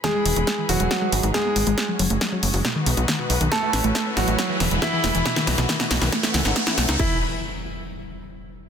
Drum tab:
CC |----------------|----------------|----------------|----------------|
HH |x-oxx-oxx-oxx-ox|x-oxx-oox-oxx-ox|x-oxx-oxx-oxx-ox|x-oxx-oox-oxx-ox|
SD |o---o---o---o---|o---o---o---o---|o-o-o-o-o-o-o-o-|oooooooooooooooo|
BD |o---o---o---o---|o---o---o---o---|o---o---o---o---|o---o---o---o---|

CC |x---------------|
HH |----------------|
SD |----------------|
BD |o---------------|